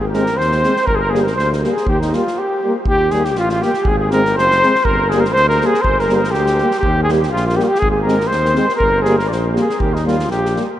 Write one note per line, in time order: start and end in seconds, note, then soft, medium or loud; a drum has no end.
0.00 0.39 G#1 medium
0.00 0.06 G#4 medium
0.09 0.37 A#4 medium
0.09 0.39 A#4 medium
0.13 0.23 G#3 medium
0.13 0.24 C4 medium
0.13 snare soft
0.26 snare soft
0.35 0.65 D#2 medium
0.35 0.89 C5 medium
0.35 0.88 C5 loud
0.41 snare soft
0.52 snare soft
0.63 0.73 G#3 medium
0.63 0.73 C4 medium
0.63 snare soft
0.76 snare soft
0.86 1.39 G1 medium
0.86 0.97 A#4 medium
0.86 0.96 A#4 medium
0.86 kick medium
0.94 0.99 G#4 medium
0.94 1.01 G#4 medium
0.94 1.11 A#4 medium
0.99 1.12 A#4 medium
1.10 1.21 A#3 medium
1.10 1.23 G#4 medium
1.10 1.21 G#4 medium
1.14 1.23 G3 medium
1.14 snare soft
1.21 1.34 A#4 medium
1.21 1.35 A#4 medium
1.27 snare soft
1.36 1.65 D2 medium
1.36 1.51 C5 medium
1.36 1.52 C5 medium
1.36 snare soft
1.53 snare soft
1.63 1.72 G3 medium
1.63 1.72 A#3 medium
1.63 snare soft
1.70 1.85 G#4 medium
1.77 snare soft
1.87 2.14 D#2 medium
1.87 2.00 G4 medium
1.87 kick medium
2.01 2.15 D#4 medium
2.01 2.16 D#4 medium
2.01 snare soft
2.13 2.22 G3 medium
2.13 2.22 A#3 medium
2.13 2.41 F4 medium
2.13 2.40 F4 medium
2.13 snare soft
2.27 snare soft
2.38 2.75 G4 medium
2.38 2.76 G4 medium
2.63 2.72 G3 soft
2.63 2.74 A#3 medium
2.85 3.37 D#2 medium
2.85 3.13 G4 medium
2.85 kick medium
3.10 3.21 G3 medium
3.10 3.26 G#4 medium
3.10 snare soft
3.14 3.24 A#3 medium
3.24 3.35 G4 medium
3.24 3.36 G4 medium
3.24 snare soft
3.35 3.63 A1 medium
3.35 3.48 F4 medium
3.35 3.50 F4 medium
3.35 snare soft
3.49 3.59 F4 medium
3.49 3.64 F4 medium
3.49 snare soft
3.58 3.85 G4 medium
3.62 3.72 G3 soft
3.62 3.72 A#3 medium
3.62 3.90 G4 medium
3.62 snare soft
3.74 snare soft
3.83 4.38 G#1 medium
3.83 3.96 G#4 medium
3.83 kick medium
3.89 3.98 G#4 medium
3.97 4.08 G#4 medium
3.97 4.09 G#4 medium
4.10 4.22 G#3 medium
4.10 4.22 C4 medium
4.10 4.33 A#4 medium
4.10 4.34 A#4 loud
4.10 snare soft
4.25 snare soft
4.34 4.63 F#1 medium
4.34 4.86 C5 medium
4.38 4.86 C5 loud
4.38 snare soft
4.51 snare soft
4.63 4.72 G#3 medium
4.63 4.73 C4 medium
4.63 snare soft
4.75 snare soft
4.84 5.37 G1 medium
4.84 5.11 A#4 medium
4.84 kick medium
5.09 5.25 G#4 medium
5.09 5.22 G#4 medium
5.09 snare soft
5.14 5.23 G3 medium
5.14 5.23 A#3 medium
5.20 5.34 A#4 medium
5.20 5.35 A#4 medium
5.25 snare soft
5.33 5.63 D2 medium
5.33 5.48 C5 loud
5.33 5.49 C5 medium
5.33 snare soft
5.49 5.67 A#4 medium
5.49 5.68 A#4 medium
5.49 snare soft
5.61 5.72 G3 medium
5.61 5.71 A#3 medium
5.61 snare soft
5.66 5.83 G#4 medium
5.66 5.84 G#4 medium
5.74 snare soft
5.81 6.36 G1 medium
5.81 6.02 C5 medium
5.81 6.00 C5 medium
5.81 kick medium
5.99 6.16 A#4 medium
5.99 6.15 A#4 medium
5.99 snare soft
6.09 6.19 G3 medium
6.09 6.20 A#3 medium
6.09 snare soft
6.15 6.33 A#4 medium
6.15 6.35 A#4 medium
6.24 snare soft
6.31 6.61 D2 medium
6.31 6.79 G4 loud
6.31 6.79 G4 medium
6.31 snare soft
6.46 snare soft
6.58 6.70 G3 soft
6.58 6.70 A#3 medium
6.58 snare soft
6.71 snare soft
6.79 7.03 G4 medium
6.79 7.02 G4 medium
6.79 kick medium
6.84 7.33 D#2 medium
7.03 7.10 G#4 medium
7.09 7.20 G3 medium
7.09 7.18 A#3 medium
7.09 snare soft
7.18 7.29 G4 medium
7.18 7.31 G4 medium
7.23 snare soft
7.29 7.59 A#1 medium
7.29 7.43 F4 medium
7.29 7.45 F4 medium
7.36 snare soft
7.44 7.57 F4 medium
7.44 7.58 F4 medium
7.49 snare soft
7.56 7.68 G3 medium
7.56 7.67 A#3 medium
7.56 7.67 G4 medium
7.56 7.65 G4 medium
7.56 snare soft
7.64 7.69 F4 medium
7.64 7.80 G4 medium
7.68 7.81 G4 medium
7.75 7.88 G#4 medium
7.75 snare soft
7.79 8.34 G#1 medium
7.79 7.90 G#4 medium
7.79 kick medium
7.89 8.02 G#4 medium
7.89 8.01 G#4 medium
8.02 8.16 G#3 medium
8.02 8.29 A#4 medium
8.02 8.30 A#4 medium
8.06 8.16 C4 medium
8.06 snare soft
8.20 snare soft
8.27 8.75 C5 loud
8.27 8.77 C5 medium
8.32 8.60 D#2 medium
8.32 snare soft
8.45 snare soft
8.54 8.66 G#3 medium
8.54 8.64 C4 medium
8.54 snare soft
8.69 snare soft
8.76 9.04 A#4 medium
8.76 9.05 A#4 medium
8.80 9.32 G1 medium
8.80 kick medium
9.02 9.15 G3 medium
9.02 9.17 G#4 medium
9.02 9.18 G#4 medium
9.02 snare soft
9.06 9.16 A#3 medium
9.18 9.30 A#4 medium
9.18 9.28 A#4 soft
9.18 snare soft
9.26 9.46 C5 medium
9.26 9.29 D5 soft
9.26 9.30 D5 medium
9.30 9.58 A#1 medium
9.30 snare soft
9.54 9.64 G3 soft
9.54 9.66 A#3 medium
9.54 snare soft
9.61 9.82 G#4 medium
9.61 9.81 G#4 medium
9.70 snare soft
9.80 10.31 D#2 medium
9.80 9.96 G4 medium
9.80 kick medium
9.94 10.06 D#4 medium
9.94 snare soft
10.05 10.16 G3 medium
10.05 10.15 A#3 medium
10.05 10.29 F4 medium
10.05 10.30 F4 medium
10.05 snare soft
10.19 snare soft
10.30 10.57 A#1 medium
10.30 10.66 G4 medium
10.30 10.67 G4 medium
10.30 snare soft
10.45 snare soft
10.54 10.66 G3 soft
10.54 10.64 A#3 soft
10.54 snare soft